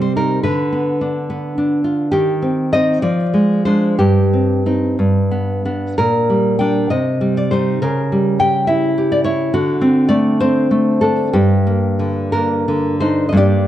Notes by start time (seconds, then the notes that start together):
Already playing: C3 G3 C4
0.01 C5
0.16 D#4 A#4
0.43 D3 B4
0.72 B3
1.01 D4
1.30 B3
1.58 D4
1.84 F4
2.12 D#3 G4
2.42 C4
2.73 C4 D#4 D#5
3.02 F3 D5
3.34 G#3
3.65 G#3 D4 C5
3.99 G2 G4
4.33 C4
4.66 C4 D#4
4.99 G2
5.31 B3
5.65 B3 D4
5.98 A#2 A#4
6.30 G3
6.59 G3 D4 G5
6.90 C3 D#5
7.21 G3
7.37 D5
7.51 G3 D#4 C5
7.82 C#3 A#4
8.12 G3
8.40 G4 G5
8.67 E4 E5
8.98 G4
9.12 D5
9.24 E4 C#5
9.54 D3 F#4
9.81 C4
10.09 A3 D5
10.40 C4 C5
10.71 A3
11.01 D4 A4
11.33 G2 G4
11.67 A#3
11.99 D3
12.32 A#3 D4 A#4
12.68 D3
13.00 D4 D#4 C5
13.29 G2 D#5
13.34 A#3 D4 G4 D5